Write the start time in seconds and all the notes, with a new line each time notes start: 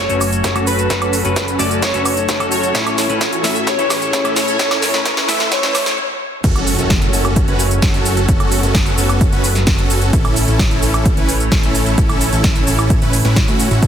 Already playing: F#3 A3 C#4 C#5, riser
0.09 F#1 A3 C#4 F#4 A4 B4, closed hi-hat, cabasa
0.21 open hi-hat, cabasa, high woodblock
0.33 closed hi-hat, cabasa
0.44 F#1 C#4 F#4 A4, kick, snare, closed hi-hat, cabasa
0.55 A3 C#4 F#4 A4, closed hi-hat, cabasa, high woodblock
0.67 B4, open hi-hat, cabasa
0.79 closed hi-hat, cabasa
0.90 F#1 A3 C#4 F#4 A4, kick, snare, closed hi-hat, cabasa
1.02 closed hi-hat, cabasa, high woodblock
1.13 open hi-hat, cabasa
1.24 F#1 A3 C#4 F#4 A4 B4, closed hi-hat, cabasa
1.36 kick, snare, closed hi-hat, cabasa
1.48 closed hi-hat, cabasa
1.59 F#1 A3 C#4 F#4 A4 D5, open hi-hat, cabasa
1.71 closed hi-hat, cabasa
1.82 C#5, kick, snare, closed hi-hat, cabasa
1.93 F#1 A3 C#4 F#4 A4 B4, closed hi-hat, cabasa
2.06 open hi-hat, cabasa, high woodblock
2.17 closed hi-hat, cabasa
2.29 F#1 C#4 F#4 A4, kick, snare, closed hi-hat, cabasa
2.39 A3 C#4 F#4 A4, closed hi-hat, cabasa, high woodblock
2.52 C#5, open hi-hat, cabasa
2.63 closed hi-hat, cabasa
2.74 A1 A2 E3 A3 C#4 E4 A4, kick, snare, closed hi-hat, cabasa
2.87 closed hi-hat, cabasa, high woodblock
2.98 snare, open hi-hat, cabasa
3.09 A1 A2 A3 C#4 E4 A4 B4, closed hi-hat, cabasa
3.21 kick, snare, closed hi-hat, cabasa
3.33 closed hi-hat, cabasa
3.43 A1 A2 A3 C#4 E4 A4 E5, snare, open hi-hat, cabasa
3.56 closed hi-hat, cabasa
3.67 C#5, kick, snare, closed hi-hat, cabasa
3.78 A1 A2 A3 C#4 E4 A4 B4, closed hi-hat, cabasa
3.90 snare, open hi-hat, cabasa, high woodblock
4.02 closed hi-hat, cabasa
4.13 A1 C#4 E4 A4, kick, snare, closed hi-hat, cabasa
4.24 A2 A3 C#4 E4 A4, closed hi-hat, cabasa, high woodblock
4.36 C#5, snare, open hi-hat, cabasa
4.48 closed hi-hat, cabasa
4.58 A1 A2 A3 C#4 E4 A4, kick, snare, closed hi-hat, cabasa
4.71 snare, closed hi-hat, cabasa, high woodblock
4.82 snare, open hi-hat, cabasa
4.93 A1 A2 A3 C#4 E4 A4 B4, snare, cabasa
5.06 kick, snare, closed hi-hat, cabasa
5.17 snare, closed hi-hat, cabasa
5.28 A1 A2 A3 C#4 E4 A4 E5, snare, open hi-hat, cabasa
5.40 snare, cabasa
5.52 C#5, kick, snare, closed hi-hat, cabasa
5.62 A1 A2 A3 C#4 E4 A4 B4, snare, closed hi-hat, cabasa
5.75 snare, open hi-hat, cabasa, high woodblock
5.86 snare, closed hi-hat, cabasa
6.44 F#1 F#3 A3 C#4 F#4 A4, kick, closed hi-hat, crash, impact, cabasa
6.56 closed hi-hat, cabasa, high woodblock
6.67 open hi-hat, cabasa
6.79 F#1 C#4 F#4 A4, closed hi-hat, cabasa
6.90 kick, snare, closed hi-hat, cabasa
7.02 closed hi-hat, cabasa
7.13 F#1 C#4 F#4 A4, open hi-hat, cabasa
7.25 closed hi-hat, cabasa, high woodblock
7.36 kick, closed hi-hat, cabasa
7.48 F#1 C#4 F#4 B4, closed hi-hat, cabasa
7.59 open hi-hat, cabasa
7.71 closed hi-hat, cabasa
7.82 F#1 C#4 F#4 A4, kick, snare, closed hi-hat, cabasa
7.94 closed hi-hat, cabasa
8.05 open hi-hat, cabasa
8.17 closed hi-hat, cabasa
8.29 F#1 B3 C#4 F#4 A4, kick, closed hi-hat, cabasa
8.40 closed hi-hat, cabasa, high woodblock
8.52 open hi-hat, cabasa
8.63 F#1 C#4 F#4 A4, closed hi-hat, cabasa
8.75 kick, snare, closed hi-hat, cabasa
8.86 closed hi-hat, cabasa
8.98 F#1 C#4 F#4 A4, open hi-hat, cabasa
9.09 closed hi-hat, cabasa, high woodblock
9.21 kick, closed hi-hat, cabasa
9.32 F#1 C#4 F#4 B4, closed hi-hat, cabasa
9.44 open hi-hat, cabasa
9.55 snare, closed hi-hat, cabasa
9.67 F#1 C#4 F#4 A4, kick, snare, closed hi-hat, cabasa
9.79 closed hi-hat, cabasa
9.90 open hi-hat, cabasa
10.02 closed hi-hat, cabasa
10.13 A1 E3 A3 C#4 E4, kick, closed hi-hat, cabasa
10.25 closed hi-hat, cabasa, high woodblock
10.36 open hi-hat, cabasa
10.48 A1 C#4 E4 A4, closed hi-hat, cabasa
10.59 kick, snare, closed hi-hat, cabasa
10.71 closed hi-hat, cabasa
10.82 A1 C#4 E4 A4, open hi-hat, cabasa
10.94 closed hi-hat, cabasa, high woodblock
11.06 kick, closed hi-hat, cabasa
11.17 A1 C#4 E4 B4, closed hi-hat, cabasa
11.29 open hi-hat, cabasa
11.40 closed hi-hat, cabasa
11.52 A1 C#4 E4 A4, kick, snare, closed hi-hat, cabasa
11.63 closed hi-hat, cabasa
11.75 open hi-hat, cabasa
11.86 closed hi-hat, cabasa
11.98 A1 E4 A4, kick, closed hi-hat, cabasa
12.09 closed hi-hat, cabasa, high woodblock
12.21 open hi-hat, cabasa
12.32 A1 C#4 E4 A4, closed hi-hat, cabasa
12.44 kick, snare, closed hi-hat, cabasa
12.56 closed hi-hat, cabasa
12.67 A1 C#4 E4 A4, open hi-hat, cabasa
12.79 closed hi-hat, cabasa, high woodblock
12.90 kick, closed hi-hat, cabasa
13.02 A1 C#4 E4 B4, closed hi-hat, cabasa
13.13 open hi-hat, cabasa
13.25 A1 C#4 E4 B4, snare, closed hi-hat, cabasa
13.36 kick, snare, closed hi-hat, cabasa
13.48 A2 C#4 E4 F#4, closed hi-hat, cabasa
13.60 open hi-hat, cabasa
13.71 A1 C#4 E4 F#4, closed hi-hat, cabasa
13.82 D2 D3 D4 F#4 A4, kick, closed hi-hat, cabasa